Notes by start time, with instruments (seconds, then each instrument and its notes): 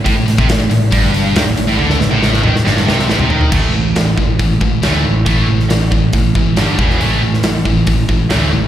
0.05 picked electric bass A1, distorted electric guitar A2, kick, open hi-hat
0.15 picked electric bass A1, distorted electric guitar A2
0.26 picked electric bass A1, distorted electric guitar A2, snare, open hi-hat
0.37 picked electric bass C2, distorted electric guitar C3, kick
0.48 picked electric bass A1, distorted electric guitar A2, snare, open hi-hat
0.59 picked electric bass A1, distorted electric guitar A2
0.70 picked electric bass A1, distorted electric guitar A2, open hi-hat
0.91 picked electric bass G1, distorted electric guitar G2, kick, open hi-hat
1.14 open hi-hat
1.35 picked electric bass D#2, distorted electric guitar D#3, snare, open hi-hat
1.45 picked electric bass A1, distorted electric guitar A2
1.56 picked electric bass A1, distorted electric guitar A2, open hi-hat
1.67 picked electric bass A1, distorted electric guitar A2
1.78 picked electric bass D2, distorted electric guitar D3, high tom
1.90 snare
2.00 picked electric bass A1, distorted electric guitar A2, snare
2.10 picked electric bass A1, distorted electric guitar A2, high tom
2.23 snare
2.33 snare
2.43 picked electric bass D#2, distorted electric guitar D#3, mid tom
2.56 snare
2.65 picked electric bass G1, distorted electric guitar G2, snare
2.77 snare
2.86 picked electric bass C2, distorted electric guitar C3, snare
2.99 snare
3.08 picked electric bass A1, distorted electric guitar A2, snare
3.18 picked electric bass C2, distorted electric guitar C3, floor tom
3.29 picked electric bass D#2, distorted electric guitar D#3, floor tom
3.41 floor tom
3.52 picked electric bass A1, distorted electric guitar A2 E3 A3, kick, crash
3.72 picked electric bass A1, distorted electric guitar A2 E3
3.95 picked electric bass A1, distorted electric guitar A2 E3, snare, open hi-hat
4.17 picked electric bass A1, distorted electric guitar A2 E3, kick
4.39 picked electric bass A1, distorted electric guitar A2 E3, kick, open hi-hat
4.61 picked electric bass A1, distorted electric guitar A2 E3, kick
4.81 picked electric bass D2, distorted electric guitar A2 E3 A3, snare, open hi-hat
5.04 picked electric bass A1, distorted electric guitar A2 E3
5.26 picked electric bass A1, distorted electric guitar A2 E3 A3, kick, open hi-hat
5.48 picked electric bass A1, distorted electric guitar A2 E3
5.60 snare
5.70 picked electric bass A1, distorted electric guitar A2 E3, snare, open hi-hat
5.91 picked electric bass A1, distorted electric guitar A2 E3, kick
6.13 picked electric bass A1, distorted electric guitar A2 E3, kick, open hi-hat
6.35 picked electric bass A1, distorted electric guitar A2 E3, kick
6.56 picked electric bass G1, distorted electric guitar G2 D3 G3, snare, open hi-hat
6.78 picked electric bass E1, distorted electric guitar E2 B2 E3, kick
6.90 snare
7.00 picked electric bass A1, distorted electric guitar A2 E3 A3, open hi-hat
7.22 picked electric bass A1, distorted electric guitar A2 E3
7.34 snare
7.43 picked electric bass A1, distorted electric guitar A2 E3, snare, open hi-hat
7.65 picked electric bass A1, distorted electric guitar A2 E3, kick
7.87 picked electric bass A1, distorted electric guitar A2 E3, kick, open hi-hat
8.09 picked electric bass A1, distorted electric guitar A2 E3, kick
8.30 picked electric bass D2, distorted electric guitar A2 E3 A3, snare, open hi-hat
8.52 picked electric bass A1, distorted electric guitar A2 E3